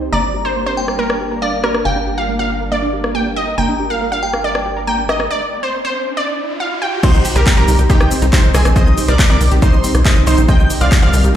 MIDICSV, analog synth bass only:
0, 0, Header, 1, 2, 480
1, 0, Start_track
1, 0, Key_signature, -3, "minor"
1, 0, Tempo, 431655
1, 140, Time_signature, 4, 2, 24, 8
1, 12636, End_track
2, 0, Start_track
2, 0, Title_t, "Analog synth bass"
2, 0, Program_c, 0, 38
2, 0, Note_on_c, 0, 36, 87
2, 116, Note_off_c, 0, 36, 0
2, 140, Note_on_c, 0, 31, 90
2, 2036, Note_off_c, 0, 31, 0
2, 2061, Note_on_c, 0, 31, 87
2, 3957, Note_off_c, 0, 31, 0
2, 3981, Note_on_c, 0, 31, 89
2, 5877, Note_off_c, 0, 31, 0
2, 7941, Note_on_c, 0, 36, 80
2, 8031, Note_off_c, 0, 36, 0
2, 8181, Note_on_c, 0, 36, 85
2, 8271, Note_off_c, 0, 36, 0
2, 8421, Note_on_c, 0, 36, 77
2, 8511, Note_off_c, 0, 36, 0
2, 8540, Note_on_c, 0, 36, 95
2, 8631, Note_off_c, 0, 36, 0
2, 8661, Note_on_c, 0, 36, 84
2, 8752, Note_off_c, 0, 36, 0
2, 8900, Note_on_c, 0, 36, 80
2, 8991, Note_off_c, 0, 36, 0
2, 9141, Note_on_c, 0, 36, 82
2, 9231, Note_off_c, 0, 36, 0
2, 9380, Note_on_c, 0, 36, 78
2, 9471, Note_off_c, 0, 36, 0
2, 9500, Note_on_c, 0, 36, 100
2, 9591, Note_off_c, 0, 36, 0
2, 9620, Note_on_c, 0, 34, 82
2, 9711, Note_off_c, 0, 34, 0
2, 9860, Note_on_c, 0, 36, 80
2, 9951, Note_off_c, 0, 36, 0
2, 10099, Note_on_c, 0, 36, 82
2, 10191, Note_off_c, 0, 36, 0
2, 10340, Note_on_c, 0, 36, 79
2, 10431, Note_off_c, 0, 36, 0
2, 10460, Note_on_c, 0, 36, 94
2, 10551, Note_off_c, 0, 36, 0
2, 10580, Note_on_c, 0, 36, 84
2, 10671, Note_off_c, 0, 36, 0
2, 10820, Note_on_c, 0, 36, 82
2, 10911, Note_off_c, 0, 36, 0
2, 11059, Note_on_c, 0, 36, 84
2, 11151, Note_off_c, 0, 36, 0
2, 11300, Note_on_c, 0, 36, 79
2, 11391, Note_off_c, 0, 36, 0
2, 11420, Note_on_c, 0, 36, 97
2, 11511, Note_off_c, 0, 36, 0
2, 11540, Note_on_c, 0, 34, 80
2, 11631, Note_off_c, 0, 34, 0
2, 11781, Note_on_c, 0, 36, 80
2, 11871, Note_off_c, 0, 36, 0
2, 12020, Note_on_c, 0, 36, 84
2, 12111, Note_off_c, 0, 36, 0
2, 12261, Note_on_c, 0, 36, 79
2, 12351, Note_off_c, 0, 36, 0
2, 12380, Note_on_c, 0, 36, 93
2, 12471, Note_off_c, 0, 36, 0
2, 12500, Note_on_c, 0, 36, 84
2, 12591, Note_off_c, 0, 36, 0
2, 12636, End_track
0, 0, End_of_file